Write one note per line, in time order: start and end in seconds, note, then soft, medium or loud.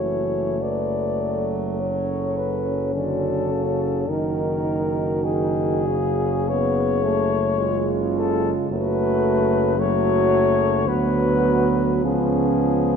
0.00 4.05 F#1 soft
0.00 0.62 E3 soft
0.00 1.82 A3 soft
0.00 0.58 F#4 soft
0.00 0.64 C#5 medium
0.60 2.94 F#3 soft
0.60 1.20 B4 soft
0.60 1.52 D5 medium
1.22 1.80 A4 soft
1.77 4.11 C#4 soft
1.77 2.94 A4 soft
1.77 2.39 C#5 medium
2.37 2.94 B4 medium
2.94 3.53 D3 soft
2.94 4.07 F#4 soft
2.94 4.11 A4 medium
3.52 4.10 C#3 soft
4.08 8.53 F#1 medium
4.08 5.22 D#3 soft
4.08 6.18 D#4 soft
4.08 6.42 F#4 soft
4.08 5.26 A#4 medium
5.23 5.87 D#3 medium
5.23 6.50 G#4 medium
5.86 7.34 C#3 medium
6.46 7.05 B3 medium
6.46 7.42 G#4 medium
6.46 8.00 C#5 medium
7.03 7.60 A3 medium
7.58 8.66 C#3 medium
7.58 8.70 G#3 medium
7.58 8.68 F4 medium
8.17 8.51 A4 medium
8.69 10.89 F#1 medium
8.69 9.75 F#3 medium
8.69 9.75 A3 medium
8.69 9.74 F#4 medium
8.69 9.81 B4 medium
9.77 10.86 F#3 medium
9.77 10.90 A3 medium
9.77 10.85 F#4 medium
9.77 10.90 C#5 loud
10.87 12.03 D2 medium
10.87 12.05 F#3 medium
10.87 12.04 B3 medium
10.87 12.02 F#4 medium
10.87 12.05 B4 medium
12.04 12.96 C#2 medium
12.04 12.96 F3 medium
12.04 12.96 B3 medium
12.04 12.96 C#4 medium
12.04 12.96 G#4 medium